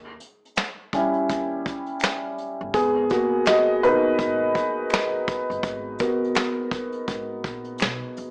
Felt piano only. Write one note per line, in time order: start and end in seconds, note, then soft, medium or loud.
0.94 1.98 G3 medium
0.94 1.98 C#4 soft
0.94 1.99 E4 medium
2.74 3.09 B3 medium
2.74 3.08 G#4 loud
3.11 3.45 A#3 medium
3.11 3.44 F#4 medium
3.47 3.81 F#4 medium
3.47 3.84 D#5 loud
3.83 4.88 B3 medium
3.83 7.77 D#4 medium
3.83 4.88 F#4 medium
3.83 4.87 A#4 medium
3.83 7.77 B4 loud
6.00 8.31 B3 soft
6.00 8.31 F#4 medium
6.00 8.31 A#4 medium